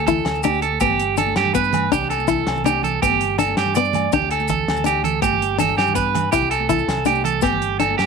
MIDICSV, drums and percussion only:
0, 0, Header, 1, 2, 480
1, 0, Start_track
1, 0, Key_signature, 1, "major"
1, 0, Tempo, 367377
1, 1066, Time_signature, 12, 3, 24, 8
1, 10532, End_track
2, 0, Start_track
2, 0, Title_t, "Drums"
2, 97, Note_on_c, 9, 42, 46
2, 100, Note_on_c, 9, 36, 60
2, 101, Note_on_c, 9, 70, 79
2, 105, Note_on_c, 9, 64, 83
2, 228, Note_off_c, 9, 42, 0
2, 230, Note_off_c, 9, 36, 0
2, 231, Note_off_c, 9, 70, 0
2, 236, Note_off_c, 9, 64, 0
2, 327, Note_on_c, 9, 68, 60
2, 337, Note_on_c, 9, 38, 83
2, 337, Note_on_c, 9, 42, 66
2, 457, Note_off_c, 9, 68, 0
2, 457, Note_on_c, 9, 70, 22
2, 468, Note_off_c, 9, 38, 0
2, 468, Note_off_c, 9, 42, 0
2, 563, Note_off_c, 9, 70, 0
2, 563, Note_on_c, 9, 70, 88
2, 572, Note_on_c, 9, 68, 61
2, 573, Note_on_c, 9, 42, 46
2, 582, Note_on_c, 9, 63, 87
2, 694, Note_off_c, 9, 70, 0
2, 702, Note_off_c, 9, 68, 0
2, 703, Note_off_c, 9, 42, 0
2, 712, Note_off_c, 9, 63, 0
2, 813, Note_on_c, 9, 42, 49
2, 943, Note_off_c, 9, 42, 0
2, 1048, Note_on_c, 9, 70, 86
2, 1052, Note_on_c, 9, 42, 57
2, 1052, Note_on_c, 9, 68, 63
2, 1059, Note_on_c, 9, 63, 90
2, 1060, Note_on_c, 9, 36, 80
2, 1162, Note_on_c, 9, 64, 67
2, 1179, Note_off_c, 9, 70, 0
2, 1183, Note_off_c, 9, 42, 0
2, 1183, Note_off_c, 9, 68, 0
2, 1189, Note_off_c, 9, 63, 0
2, 1191, Note_off_c, 9, 36, 0
2, 1293, Note_off_c, 9, 64, 0
2, 1299, Note_on_c, 9, 42, 46
2, 1430, Note_off_c, 9, 42, 0
2, 1529, Note_on_c, 9, 70, 80
2, 1535, Note_on_c, 9, 68, 60
2, 1538, Note_on_c, 9, 64, 78
2, 1542, Note_on_c, 9, 42, 45
2, 1652, Note_on_c, 9, 63, 63
2, 1659, Note_off_c, 9, 70, 0
2, 1666, Note_off_c, 9, 68, 0
2, 1669, Note_off_c, 9, 64, 0
2, 1672, Note_off_c, 9, 42, 0
2, 1773, Note_on_c, 9, 68, 60
2, 1775, Note_on_c, 9, 38, 75
2, 1775, Note_on_c, 9, 42, 59
2, 1783, Note_off_c, 9, 63, 0
2, 1903, Note_off_c, 9, 68, 0
2, 1906, Note_off_c, 9, 38, 0
2, 1906, Note_off_c, 9, 42, 0
2, 1906, Note_on_c, 9, 64, 65
2, 2022, Note_on_c, 9, 70, 78
2, 2027, Note_on_c, 9, 42, 42
2, 2029, Note_on_c, 9, 36, 56
2, 2037, Note_off_c, 9, 64, 0
2, 2139, Note_off_c, 9, 70, 0
2, 2139, Note_on_c, 9, 70, 24
2, 2158, Note_off_c, 9, 42, 0
2, 2160, Note_off_c, 9, 36, 0
2, 2257, Note_on_c, 9, 63, 83
2, 2257, Note_on_c, 9, 64, 80
2, 2267, Note_on_c, 9, 42, 44
2, 2270, Note_off_c, 9, 70, 0
2, 2274, Note_on_c, 9, 68, 64
2, 2387, Note_off_c, 9, 63, 0
2, 2387, Note_off_c, 9, 64, 0
2, 2398, Note_off_c, 9, 42, 0
2, 2404, Note_off_c, 9, 68, 0
2, 2511, Note_on_c, 9, 36, 78
2, 2511, Note_on_c, 9, 42, 62
2, 2518, Note_on_c, 9, 70, 82
2, 2624, Note_on_c, 9, 64, 63
2, 2641, Note_off_c, 9, 42, 0
2, 2642, Note_off_c, 9, 36, 0
2, 2649, Note_off_c, 9, 70, 0
2, 2746, Note_off_c, 9, 64, 0
2, 2746, Note_on_c, 9, 64, 26
2, 2751, Note_on_c, 9, 42, 45
2, 2763, Note_on_c, 9, 68, 60
2, 2854, Note_on_c, 9, 63, 66
2, 2868, Note_on_c, 9, 70, 22
2, 2876, Note_off_c, 9, 64, 0
2, 2882, Note_off_c, 9, 42, 0
2, 2893, Note_off_c, 9, 68, 0
2, 2976, Note_off_c, 9, 70, 0
2, 2976, Note_on_c, 9, 70, 73
2, 2984, Note_off_c, 9, 63, 0
2, 2988, Note_on_c, 9, 42, 42
2, 2988, Note_on_c, 9, 64, 76
2, 2995, Note_on_c, 9, 36, 57
2, 3107, Note_off_c, 9, 70, 0
2, 3119, Note_off_c, 9, 42, 0
2, 3119, Note_off_c, 9, 64, 0
2, 3125, Note_off_c, 9, 36, 0
2, 3223, Note_on_c, 9, 38, 82
2, 3223, Note_on_c, 9, 42, 61
2, 3242, Note_on_c, 9, 68, 61
2, 3346, Note_on_c, 9, 64, 61
2, 3354, Note_off_c, 9, 38, 0
2, 3354, Note_off_c, 9, 42, 0
2, 3356, Note_on_c, 9, 70, 20
2, 3372, Note_off_c, 9, 68, 0
2, 3453, Note_on_c, 9, 63, 74
2, 3470, Note_on_c, 9, 42, 47
2, 3477, Note_off_c, 9, 64, 0
2, 3482, Note_off_c, 9, 70, 0
2, 3482, Note_on_c, 9, 70, 75
2, 3488, Note_on_c, 9, 68, 64
2, 3584, Note_off_c, 9, 63, 0
2, 3600, Note_off_c, 9, 42, 0
2, 3612, Note_off_c, 9, 70, 0
2, 3619, Note_off_c, 9, 68, 0
2, 3698, Note_on_c, 9, 64, 78
2, 3717, Note_on_c, 9, 42, 50
2, 3829, Note_off_c, 9, 64, 0
2, 3847, Note_off_c, 9, 42, 0
2, 3950, Note_on_c, 9, 68, 63
2, 3955, Note_on_c, 9, 63, 80
2, 3957, Note_on_c, 9, 36, 78
2, 3957, Note_on_c, 9, 42, 63
2, 3963, Note_on_c, 9, 70, 67
2, 4070, Note_on_c, 9, 64, 57
2, 4081, Note_off_c, 9, 68, 0
2, 4086, Note_off_c, 9, 63, 0
2, 4087, Note_off_c, 9, 36, 0
2, 4088, Note_off_c, 9, 42, 0
2, 4093, Note_off_c, 9, 70, 0
2, 4189, Note_on_c, 9, 42, 48
2, 4201, Note_off_c, 9, 64, 0
2, 4320, Note_off_c, 9, 42, 0
2, 4422, Note_on_c, 9, 64, 77
2, 4424, Note_on_c, 9, 68, 60
2, 4432, Note_on_c, 9, 42, 47
2, 4436, Note_on_c, 9, 70, 77
2, 4545, Note_on_c, 9, 63, 56
2, 4553, Note_off_c, 9, 64, 0
2, 4554, Note_off_c, 9, 68, 0
2, 4563, Note_off_c, 9, 42, 0
2, 4566, Note_off_c, 9, 70, 0
2, 4665, Note_on_c, 9, 38, 76
2, 4665, Note_on_c, 9, 42, 65
2, 4670, Note_on_c, 9, 68, 58
2, 4676, Note_off_c, 9, 63, 0
2, 4777, Note_on_c, 9, 64, 59
2, 4795, Note_off_c, 9, 38, 0
2, 4795, Note_off_c, 9, 42, 0
2, 4801, Note_off_c, 9, 68, 0
2, 4901, Note_on_c, 9, 70, 73
2, 4905, Note_on_c, 9, 42, 49
2, 4908, Note_off_c, 9, 64, 0
2, 5023, Note_off_c, 9, 70, 0
2, 5023, Note_on_c, 9, 70, 23
2, 5035, Note_off_c, 9, 42, 0
2, 5139, Note_on_c, 9, 63, 85
2, 5139, Note_on_c, 9, 64, 83
2, 5152, Note_on_c, 9, 42, 43
2, 5154, Note_off_c, 9, 70, 0
2, 5164, Note_on_c, 9, 68, 62
2, 5270, Note_off_c, 9, 63, 0
2, 5270, Note_off_c, 9, 64, 0
2, 5283, Note_off_c, 9, 42, 0
2, 5295, Note_off_c, 9, 68, 0
2, 5388, Note_on_c, 9, 70, 83
2, 5390, Note_on_c, 9, 42, 63
2, 5395, Note_on_c, 9, 36, 88
2, 5510, Note_on_c, 9, 64, 70
2, 5518, Note_off_c, 9, 70, 0
2, 5520, Note_off_c, 9, 42, 0
2, 5526, Note_off_c, 9, 36, 0
2, 5626, Note_on_c, 9, 42, 47
2, 5630, Note_off_c, 9, 64, 0
2, 5630, Note_on_c, 9, 64, 27
2, 5643, Note_on_c, 9, 68, 60
2, 5742, Note_on_c, 9, 70, 25
2, 5747, Note_on_c, 9, 63, 64
2, 5756, Note_off_c, 9, 42, 0
2, 5761, Note_off_c, 9, 64, 0
2, 5774, Note_off_c, 9, 68, 0
2, 5854, Note_off_c, 9, 70, 0
2, 5854, Note_on_c, 9, 70, 81
2, 5870, Note_on_c, 9, 64, 83
2, 5872, Note_on_c, 9, 42, 46
2, 5875, Note_on_c, 9, 36, 53
2, 5878, Note_off_c, 9, 63, 0
2, 5984, Note_off_c, 9, 70, 0
2, 6001, Note_off_c, 9, 64, 0
2, 6002, Note_off_c, 9, 42, 0
2, 6005, Note_off_c, 9, 36, 0
2, 6121, Note_on_c, 9, 38, 78
2, 6121, Note_on_c, 9, 42, 58
2, 6136, Note_on_c, 9, 68, 62
2, 6225, Note_on_c, 9, 70, 25
2, 6229, Note_on_c, 9, 64, 65
2, 6251, Note_off_c, 9, 38, 0
2, 6251, Note_off_c, 9, 42, 0
2, 6266, Note_off_c, 9, 68, 0
2, 6341, Note_on_c, 9, 63, 83
2, 6350, Note_off_c, 9, 70, 0
2, 6350, Note_on_c, 9, 70, 82
2, 6352, Note_on_c, 9, 42, 41
2, 6356, Note_on_c, 9, 68, 59
2, 6359, Note_off_c, 9, 64, 0
2, 6472, Note_off_c, 9, 63, 0
2, 6481, Note_off_c, 9, 70, 0
2, 6483, Note_off_c, 9, 42, 0
2, 6487, Note_off_c, 9, 68, 0
2, 6584, Note_on_c, 9, 64, 86
2, 6597, Note_on_c, 9, 42, 47
2, 6715, Note_off_c, 9, 64, 0
2, 6728, Note_off_c, 9, 42, 0
2, 6826, Note_on_c, 9, 42, 59
2, 6834, Note_on_c, 9, 68, 59
2, 6836, Note_on_c, 9, 36, 84
2, 6838, Note_on_c, 9, 63, 84
2, 6838, Note_on_c, 9, 64, 29
2, 6839, Note_on_c, 9, 70, 89
2, 6957, Note_off_c, 9, 42, 0
2, 6962, Note_off_c, 9, 64, 0
2, 6962, Note_on_c, 9, 64, 67
2, 6964, Note_off_c, 9, 68, 0
2, 6966, Note_off_c, 9, 36, 0
2, 6969, Note_off_c, 9, 63, 0
2, 6969, Note_off_c, 9, 70, 0
2, 7080, Note_off_c, 9, 64, 0
2, 7080, Note_on_c, 9, 64, 28
2, 7083, Note_on_c, 9, 42, 45
2, 7084, Note_on_c, 9, 70, 26
2, 7210, Note_off_c, 9, 64, 0
2, 7214, Note_off_c, 9, 42, 0
2, 7214, Note_off_c, 9, 70, 0
2, 7306, Note_on_c, 9, 68, 60
2, 7307, Note_on_c, 9, 70, 85
2, 7316, Note_on_c, 9, 64, 90
2, 7319, Note_on_c, 9, 42, 46
2, 7436, Note_off_c, 9, 68, 0
2, 7437, Note_off_c, 9, 64, 0
2, 7437, Note_on_c, 9, 63, 64
2, 7437, Note_on_c, 9, 64, 26
2, 7438, Note_off_c, 9, 70, 0
2, 7450, Note_off_c, 9, 42, 0
2, 7551, Note_on_c, 9, 70, 27
2, 7560, Note_on_c, 9, 38, 72
2, 7560, Note_on_c, 9, 42, 60
2, 7563, Note_on_c, 9, 68, 60
2, 7565, Note_off_c, 9, 64, 0
2, 7565, Note_on_c, 9, 64, 28
2, 7568, Note_off_c, 9, 63, 0
2, 7662, Note_off_c, 9, 70, 0
2, 7662, Note_on_c, 9, 70, 25
2, 7683, Note_off_c, 9, 64, 0
2, 7683, Note_on_c, 9, 64, 69
2, 7691, Note_off_c, 9, 38, 0
2, 7691, Note_off_c, 9, 42, 0
2, 7694, Note_off_c, 9, 68, 0
2, 7783, Note_off_c, 9, 70, 0
2, 7783, Note_on_c, 9, 70, 80
2, 7804, Note_on_c, 9, 36, 57
2, 7810, Note_on_c, 9, 42, 45
2, 7814, Note_off_c, 9, 64, 0
2, 7913, Note_off_c, 9, 70, 0
2, 7934, Note_off_c, 9, 36, 0
2, 7940, Note_off_c, 9, 42, 0
2, 8030, Note_on_c, 9, 68, 63
2, 8040, Note_on_c, 9, 63, 84
2, 8040, Note_on_c, 9, 64, 86
2, 8047, Note_on_c, 9, 42, 47
2, 8160, Note_off_c, 9, 68, 0
2, 8164, Note_off_c, 9, 64, 0
2, 8164, Note_on_c, 9, 64, 26
2, 8171, Note_off_c, 9, 63, 0
2, 8177, Note_off_c, 9, 42, 0
2, 8266, Note_on_c, 9, 70, 84
2, 8275, Note_on_c, 9, 42, 67
2, 8279, Note_on_c, 9, 36, 82
2, 8295, Note_off_c, 9, 64, 0
2, 8391, Note_on_c, 9, 64, 68
2, 8397, Note_off_c, 9, 70, 0
2, 8405, Note_off_c, 9, 42, 0
2, 8410, Note_off_c, 9, 36, 0
2, 8506, Note_on_c, 9, 42, 47
2, 8514, Note_on_c, 9, 68, 57
2, 8522, Note_off_c, 9, 64, 0
2, 8626, Note_on_c, 9, 63, 68
2, 8636, Note_off_c, 9, 42, 0
2, 8644, Note_off_c, 9, 68, 0
2, 8747, Note_on_c, 9, 70, 75
2, 8753, Note_on_c, 9, 42, 45
2, 8754, Note_on_c, 9, 64, 82
2, 8757, Note_off_c, 9, 63, 0
2, 8757, Note_on_c, 9, 36, 57
2, 8866, Note_off_c, 9, 70, 0
2, 8866, Note_on_c, 9, 70, 27
2, 8880, Note_off_c, 9, 64, 0
2, 8880, Note_on_c, 9, 64, 26
2, 8883, Note_off_c, 9, 42, 0
2, 8887, Note_off_c, 9, 36, 0
2, 8997, Note_off_c, 9, 70, 0
2, 8997, Note_on_c, 9, 38, 78
2, 8997, Note_on_c, 9, 42, 64
2, 8999, Note_on_c, 9, 68, 58
2, 9011, Note_off_c, 9, 64, 0
2, 9111, Note_on_c, 9, 64, 65
2, 9128, Note_off_c, 9, 38, 0
2, 9128, Note_off_c, 9, 42, 0
2, 9130, Note_off_c, 9, 68, 0
2, 9213, Note_on_c, 9, 70, 76
2, 9217, Note_on_c, 9, 63, 78
2, 9226, Note_on_c, 9, 68, 60
2, 9230, Note_on_c, 9, 42, 47
2, 9242, Note_off_c, 9, 64, 0
2, 9339, Note_off_c, 9, 70, 0
2, 9339, Note_on_c, 9, 70, 24
2, 9347, Note_off_c, 9, 63, 0
2, 9357, Note_off_c, 9, 68, 0
2, 9360, Note_off_c, 9, 42, 0
2, 9463, Note_on_c, 9, 64, 81
2, 9470, Note_off_c, 9, 70, 0
2, 9478, Note_on_c, 9, 42, 50
2, 9594, Note_off_c, 9, 64, 0
2, 9609, Note_off_c, 9, 42, 0
2, 9687, Note_on_c, 9, 70, 72
2, 9692, Note_on_c, 9, 63, 82
2, 9714, Note_on_c, 9, 36, 80
2, 9714, Note_on_c, 9, 68, 65
2, 9717, Note_on_c, 9, 42, 61
2, 9817, Note_off_c, 9, 70, 0
2, 9823, Note_off_c, 9, 63, 0
2, 9831, Note_on_c, 9, 64, 65
2, 9845, Note_off_c, 9, 36, 0
2, 9845, Note_off_c, 9, 68, 0
2, 9848, Note_off_c, 9, 42, 0
2, 9952, Note_on_c, 9, 42, 45
2, 9962, Note_off_c, 9, 64, 0
2, 10083, Note_off_c, 9, 42, 0
2, 10190, Note_on_c, 9, 42, 47
2, 10199, Note_on_c, 9, 64, 80
2, 10202, Note_on_c, 9, 68, 59
2, 10321, Note_off_c, 9, 42, 0
2, 10324, Note_on_c, 9, 63, 57
2, 10330, Note_off_c, 9, 64, 0
2, 10333, Note_off_c, 9, 68, 0
2, 10438, Note_on_c, 9, 38, 78
2, 10438, Note_on_c, 9, 42, 57
2, 10451, Note_on_c, 9, 68, 59
2, 10454, Note_off_c, 9, 63, 0
2, 10532, Note_off_c, 9, 38, 0
2, 10532, Note_off_c, 9, 42, 0
2, 10532, Note_off_c, 9, 68, 0
2, 10532, End_track
0, 0, End_of_file